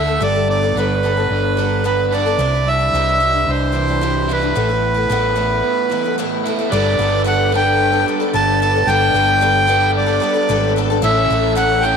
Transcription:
Already playing: D2 D3 A3 E4 A4 E5
0.07 A3 E4 A4
0.21 G1 G3 B3 D4 A4 D5
0.34 B3 D4 A4
0.48 B3 D5
0.63 B3 D4 A4
0.75 G1 G3 B3 D4 A4 B4
1.03 G3 B3 D4 A4
1.17 B3 D4 A4
1.30 G1 D4
1.57 G3 B3 D4 A4
1.84 G3 B3 D4 A4 B4
2.12 G3 B3 D4 A4 D5
2.26 B3 D4 A4
2.38 C2 C3 E3 G3 D4 E4
2.54 G3 D4 E4
2.65 G3 E5
2.79 G3 D4 E4
2.93 C2 C3 E3 G3 D4 E4
3.20 E3 G3 D4 E4
3.33 G3 D4 E4
3.47 C2 D4 C5
3.72 E3 G3 D4 E4
3.88 G3 D4 E4
4.01 C3 E3 G3 D4 E4
4.29 E3 G3 D4 E4 B4
4.41 G3 D4 E4
4.55 A1 A2 E3 A3 B3 E4
4.69 A3 B3 E4
4.81 A3
4.94 A3 B3 E4
5.09 A1 A2 E3 A3 B3 E4
5.36 E3 A3 B3 E4
5.63 B3
5.90 E3 A3 B3 E4
6.04 A3 B3 E4
6.18 A2 E3 A3 B3 E4
6.44 E3 A3 B3 E4
6.48 E4
6.59 A3 B3 E4
6.70 G1 G3 B3 D4 G4 A4 B4 D5
6.99 G1 G3 B3 D4 A4
7.24 G3 B3 D4 A4 F#5
7.52 G3 B3 D4 A4 B4
7.56 G5
7.92 B3 D4 A4
8.06 G3 B3 D4 A4
8.20 B3 D4 A4
8.34 G1 G3 B3 D4 A4 A5
8.60 G3 B3 D4 A4 A5
8.76 B3 D4 A4
8.87 G1 G3 B3 D4 A4 B4 G5
9.14 G1 G3 B3 D4 A4
9.41 G3 B3 D4 A4
9.67 G3 B3 D4 A4 B4
9.97 D5
10.07 B3 D4 A4
10.20 G3 B3 D4 A4
10.34 B3 D4 A4
10.49 G#1 G3 B3 D4 A4
10.76 G3 B3 D4 A4
10.90 B3 D4 A4
11.02 A1 A2 E3 A3 C#4 E4 A4 C#5 E5
11.30 A1 E3 A3 C#4 A4
11.55 A2 E3 A3 C#4 A4 F#5
11.81 E3 A3 E4 G5
11.85 A2 C#4 A4

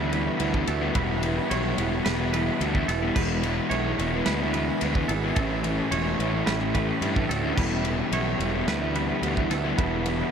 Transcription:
Already playing: D2 E3 E4 G4 B4 F#5
0.00 G3 B3
0.12 E3 G3 B3 E4 B4, ride
0.25 G3 B3 E4
0.38 D2 E3 G3 B3 E4, ride
0.53 G3 B3 E4, kick
0.67 D2 E3 G3 B3 E4 A4, muted distorted electric guitar stroke, ride
0.81 G3 B3 E4
0.95 E1 E3 G3 B3 E4 B4, kick, ride
1.22 E3 G3 B3 E4, ride
1.36 G3 B3 E4
1.49 B1 E3 G3 B3 E4 C#5, ride
1.64 G3 B3 E4
1.76 E1 E3 G3 B3 E4, ride
1.90 G3 B3 E4
2.05 E1 B4, snare, ride
2.19 G3 B3 E4
2.32 E3 G3 B3 E4 B4, ride
2.46 G3 B3 E4
2.60 D2 E3 G3 B3 E4, ride
2.75 G3 B3 E4, kick
2.88 E1 E3 G3 B3 E4 A4, muted distorted electric guitar stroke, snare, ride
3.02 G3 B3 E4
3.15 E1 E3 G#3 B3 E4 B4 G#5, kick, crash
3.43 E3 G#3 B3 E4, ride
3.58 G#3 B3 E4
3.70 B1 E3 G#3 B3 E4 C#5, ride
3.84 G#3 B3 E4
3.98 E1 E3 G#3 B3 E4, ride
4.13 G#3 B3 E4
4.26 D2 B4, snare, ride
4.40 G#3 B3 E4
4.53 E3 G#3 B3 E4 B4, ride
4.69 G#3 B3 E4
4.81 D2 E3 G#3 B3 E4, ride
4.95 G#3 B3 E4, kick
5.08 G#1 E3 G#3 B3 A4, muted distorted electric guitar stroke, ride
5.13 E4
5.24 G#3 B3 E4
5.36 A1 A2 E3 G3 A3 C#4 E4 A4 G5, kick, ride
5.64 E3 G3 A3 C#4 E4, ride
5.79 G3 C#4 E4
5.91 E1 A2 E3 G3 A3 C#4 E4 C#5, ride
6.07 A3 C#4 E4
6.19 A1 E3 G3 A3 C#4 E4, ride
6.33 G3 A3 C#4 E4
6.46 A1 B4, snare, ride
6.60 G3 C#4 E4
6.64 A3
6.74 E3 G3 A3 C#4 E4 B4, kick, ride
6.88 G3 C#4 E4
7.02 G2 A2 E3 G3 A3 C#4 E4, ride
7.15 G3 C#4 E4, kick
7.19 A3
7.29 D2 E3 G3 C#4 E4 A4, muted distorted electric guitar stroke, snare, ride
7.43 A3 C#4 E4
7.56 E1 E3 G3 B3 E4 G4 B4 F#5, kick, crash
7.84 E3 G3 B3 E4, ride
7.99 G3 B3 E4
8.12 B1 E3 G3 B3 E4 C#5, ride
8.26 G3 B3 E4
8.40 E1 E3 G3 B3 E4, ride
8.53 G3 B3 E4
8.67 D2 B4, snare, ride
8.81 G3 B3 E4
8.95 E3 G3 B3 E4 B4, ride
9.08 G3 B3 E4
9.22 D2 E3 G3 B3 E4, ride
9.37 G3 B3 E4, kick
9.50 D2 E3 G3 B3 E4 A4, muted distorted electric guitar stroke, snare, ride
9.64 G3 B3 E4
9.78 E1 E3 G3 B3 E4 B4, kick, ride
10.06 E3 G3 B3 E4, ride
10.20 G3 B3 E4

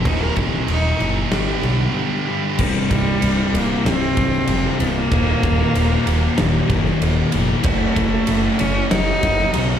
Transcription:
0.04 D#1 D#2 A#2 D#3 F#3 A#3 D#4, kick, crash
0.22 A#4
0.36 C1 C4, kick, crash
0.68 D#1 D#4, crash
0.99 F#1 D#2 A#2 D#3 F#3 A#3 D#4, crash
1.30 G1 G2 D3 G3 B3 D4 G4, snare, crash
1.63 B1, crash
2.27 G2 D3 G3 B3 D4 G4
2.59 C1 C2 G2 C3 G3 D#4, kick, crash
2.90 C1 C2 G2 C3, kick, ride
3.22 C1 C2 G2 C3, ride
3.53 C1 C2 G2 C3 A#3, ride
3.85 C1 C2 G2 C3 C4, snare, ride
4.17 C1 C2 G2 C3, kick, ride
4.33 snare
4.47 F1 C2 G2 C3, ride
4.79 C1 C2 G2 C3 A#3, ride
5.11 D#1 D#2 A#2 D#3 F#3 A#3 D#4, kick, ride
5.43 D#1 D#2 A#2 D#3, kick, ride
5.74 D#1 D#2 A#2 D#3, ride
6.06 D#1 D#2 A#2 D#3, ride
6.38 D#1 D#2 A#2 D#3, snare, ride
6.69 F#1 D#2 A#2 D#3, kick, ride
6.86 snare
7.00 D#1 D#2 A#2 D#3, ride
7.32 F1 D#2 A#2 D#3, ride
7.62 F#1 F#2 C#3 F#3 A3 C#4, kick, ride
7.66 A3 F#4
7.94 F#1 F#2 C#3 F#3, kick, ride
8.27 F#1 F#2 C#3 F#3, ride
8.59 F#1 F#2 C#3 F#3 C#4, ride
8.90 F#1 F#2 C#3 F#3 D#4, snare, ride
9.22 F#1 F#2 C#3 F#3, kick, ride
9.39 snare
9.53 B1 F#2 C#3 F#3, ride

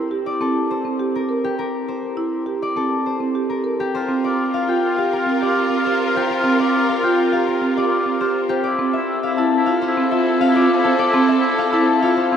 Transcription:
Already playing: G4 A4 A#4 C5 D5
0.11 G4
0.26 D5
0.41 C4 A4
0.71 C5
0.85 C4
1.00 G4
1.16 A#4
1.29 A#4
1.44 G4
1.59 A#4
1.88 C5
2.17 E4
2.46 G4
2.62 D5
2.76 C4 A4
3.06 C5
3.20 C4
3.35 G4
3.50 A#4
3.64 A#4
3.80 G4
3.95 F4 A#4 C5
4.09 C4
4.24 F4 D5
4.54 F4 F5
4.68 F4 G5
4.85 F4
4.97 G4 F5
5.13 F4 A#4
5.26 C4
5.41 G4 D5
5.46 F4
5.70 C4
5.77 F4
5.85 G4 C5
6.07 F4
6.14 G4 C5
6.30 C5
6.37 F4
6.44 C4
6.60 D5
6.68 F4
6.89 F5
6.99 F4
7.03 F4 G5
7.28 F4
7.33 G4 F5
7.48 A#4
7.60 C4 F4
7.77 G4 D5
7.91 F4
8.06 C4
8.20 F4 G4 C5
8.49 G4 C5
8.64 C4 E4 A4 D5
8.79 C4
8.93 E4 E5
9.23 E4 F5
9.37 E4 A5
9.57 E4
9.66 F4 F5
9.82 C5
9.87 E4
9.97 C4
10.11 F4 E5
10.17 E4
10.41 C4 F5
10.48 E4
10.55 F4 D5
10.79 E4
10.84 A4 C5
10.99 D5
11.09 E4
11.14 C4
11.28 E5
11.39 E4
11.58 F5
11.70 E4 A5
12.00 E4 F4 F5
12.17 C5
12.30 C4 E4

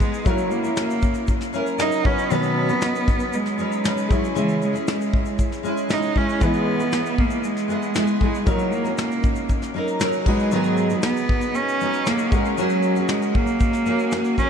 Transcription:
Already playing: G#3 B3 D#4 B4
0.00 G#3 B3 D#4 G#4, kick, shaker
0.14 shaker
0.24 F#3 A3 C#4 E4 F#4 A#4 C#5, kick, shaker
0.30 A#3
0.38 shaker
0.51 A#3, shaker
0.63 C#4 E4 A#4, shaker
0.76 A#3, snare, shaker
0.90 shaker
1.02 kick, shaker
1.14 shaker
1.28 kick, shaker
1.41 snare, shaker
1.53 F#3 C#4 E4 A#4, shaker
1.67 shaker
1.78 F#3 C#4 D#4 E4 A#4, snare, shaker
1.91 shaker
2.03 F#3 B3 C#4 D#4 F#4 B4 C#5, kick
2.18 shaker
2.30 B2 D#3 F#3 B3 C#4 D#4 B4, shaker
2.43 shaker
2.69 F#3 C#4 D#4 B4, shaker
2.81 snare, shaker
2.95 shaker
3.08 kick, shaker
3.20 shaker
3.33 G#3, shaker
3.46 snare, shaker
3.58 F#3 C#4 D#4 B4, shaker
3.72 shaker
3.84 F#3 C#4 D#4 B4, snare, shaker
3.97 shaker
4.08 F#3 G#3 C#4 E4 G#4, kick, shaker
4.12 C#5
4.24 shaker
4.35 C#3 E3 G#3 C#4 E4 G#4, shaker
4.49 shaker
4.62 G#3, shaker
4.73 C#4 E4 G#4, shaker
4.87 G#3, snare, shaker
5.01 shaker
5.13 kick
5.26 shaker
5.39 kick, shaker
5.52 snare, shaker
5.63 G#3 C#4 E4 G#4, shaker
5.77 shaker
5.88 G#3 C#4 D#4 E4 G#4, snare, shaker
6.02 shaker
6.15 G#3 C#4 E4 G#4, kick
6.29 shaker
6.39 E3 G#3 B3 E4 G#4, kick, shaker
6.43 B3 B4
6.54 shaker
6.78 B3 E4 G#4, shaker
6.92 snare, shaker
7.06 shaker
7.18 A#3, kick
7.30 shaker
7.44 G#3, shaker
7.57 snare, shaker
7.68 G#3 B3 E4 G#4, shaker
7.83 shaker
7.95 G#3 B3 E4 G#4, snare, shaker
8.07 shaker
8.20 G#3 B3 E4 G#4, kick
8.35 shaker
8.46 F#3 A#3 C#4 D#4 F#4 A#4 C#5, kick, shaker
8.59 shaker
8.72 A#3, shaker
8.84 C#4 D#4 A#4, shaker
8.98 A#3, snare, shaker
9.11 shaker
9.23 kick, shaker
9.36 shaker
9.49 kick, shaker
9.62 snare, shaker
9.74 F#3 C#4 D#4 A#4
9.88 shaker
9.99 F#3 C#4 D#4 A#4, snare, shaker
10.12 shaker
10.25 F#3 G#3 B3 D#4 F#4 G#4, kick, crash
10.29 B4
10.39 shaker
10.51 G#2 D#3 F#3 B3 D#4 G#4, shaker
10.64 shaker
10.77 shaker
10.90 F#3 B3 D#4 G#4, shaker
11.02 B3, snare, shaker
11.17 shaker
11.29 kick
11.41 shaker
11.55 C#4, shaker
11.69 shaker
11.81 F#3 B3 D#4 G#4, shaker
11.93 shaker
12.06 F#3 A#3 B3 D#4 G#4, snare, shaker
12.18 shaker
12.31 G#3 A#3 C#4 F#4 G#4 A#4, kick, shaker
12.45 shaker
12.57 F#3 A#3 C#4 F#4 G#4, shaker
12.69 shaker
12.83 shaker
12.96 C#4 F#4 G#4, shaker
13.08 G#3, snare, shaker
13.22 shaker
13.35 A#3, kick
13.47 shaker
13.60 kick, shaker
13.73 snare, shaker
13.86 A#3 C#4 F#4 G#4, shaker
13.99 shaker
14.11 A#3 C#4 F#4 G#4, snare, shaker
14.25 shaker
14.37 A#3 C#4 F#4 G#4, kick, shaker

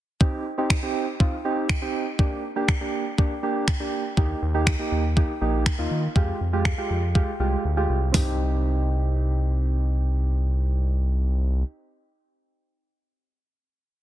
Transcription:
0.21 C4 D#4 G4, kick
0.58 C4 D#4 G4
0.70 finger snap, kick
0.83 C4 D#4 G4
1.20 C4 D#4 F4, kick
1.45 C4 D#4 G4
1.69 finger snap, kick
1.82 C4 D#4 G4
2.19 A#3 D4 G4, kick
2.56 A#3 D4 G4
2.68 finger snap, kick
2.81 A#3 D4 G4
3.18 A#3 D4 G4, kick
3.43 A#3 D4 G4
3.68 finger snap, kick
3.80 A#3 D4 G4
4.17 D#2 A#3 D#4 G4, kick
4.42 D#2
4.54 A#3 D#4 G4
4.67 finger snap, kick
4.79 A#3 D#4 G4
4.92 D#2
5.16 A#3 D#4 G4, kick
5.41 A#1 A#3 D#4 G4
5.66 finger snap, kick
5.78 D#2 A#3 D#4 F4
5.91 D#3
6.16 F2 G#3 F4 G4, kick
6.41 F2
6.53 G#3 F4 G4
6.65 finger snap, kick
6.78 G#3 F4 G4
6.90 F2
7.15 G#3 F4 G4, kick
7.40 C2 G#3 F4 G4
7.65 D2
7.77 G#3 F4 G4
7.89 C2
8.12 C2 C4 D#4, kick, floor tom, open hi-hat
8.16 G4

